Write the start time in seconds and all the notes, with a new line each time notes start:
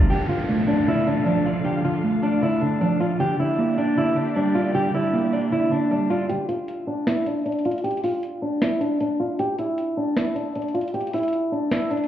Already playing: G3 D5
0.10 D3 D4 F4 G4 A4 F5, downlifter
0.29 D3 F4
0.49 A3
0.67 D4 D5
0.88 D3 E4
1.07 D3 D4
1.26 F3 D4
1.46 F4 D5
1.65 D3 G4
1.84 D3 F4
2.04 A3
2.23 D4 D5
2.42 D3 E4
2.61 D3 D4
2.81 F3 D4
3.00 F4 D5
3.20 D3 A#3 G4 D5
3.39 D3 E4
3.59 A#3
3.78 D4 D5
3.97 D3 E4
4.16 D3 D4
4.36 G3 D4
4.55 F4 D5
4.75 D3 G4
4.94 D3 E4
5.13 A#3
5.33 D4 D5
5.52 D3 E4
5.71 D3 D4
5.91 G3 D4
6.10 F4 D5
6.29 G4, closed hi-hat
6.48 F4, closed hi-hat
6.68 closed hi-hat
6.87 D4
7.07 E4, snare, closed hi-hat
7.26 D4, closed hi-hat
7.45 D4, closed hi-hat
7.52 closed hi-hat
7.59 closed hi-hat
7.65 F4, closed hi-hat
7.71 closed hi-hat
7.78 closed hi-hat
7.84 G4, closed hi-hat
7.91 closed hi-hat
7.97 closed hi-hat
8.04 F4, open hi-hat
8.23 closed hi-hat
8.42 D4
8.62 E4, snare, closed hi-hat
8.80 D4, closed hi-hat
9.00 D4, closed hi-hat
9.20 F4
9.39 G4, closed hi-hat
9.59 E4, closed hi-hat
9.78 closed hi-hat
9.97 D4
10.17 E4, snare, closed hi-hat
10.35 D4, closed hi-hat
10.55 D4, closed hi-hat
10.62 closed hi-hat
10.68 closed hi-hat
10.74 F4, closed hi-hat
10.81 closed hi-hat
10.88 closed hi-hat
10.94 G4, closed hi-hat
11.00 closed hi-hat
11.07 closed hi-hat
11.13 E4, closed hi-hat, open hi-hat
11.18 closed hi-hat
11.23 closed hi-hat
11.28 closed hi-hat
11.33 closed hi-hat
11.52 D4
11.71 E4, snare, closed hi-hat
11.91 D4, closed hi-hat
11.97 closed hi-hat
12.04 closed hi-hat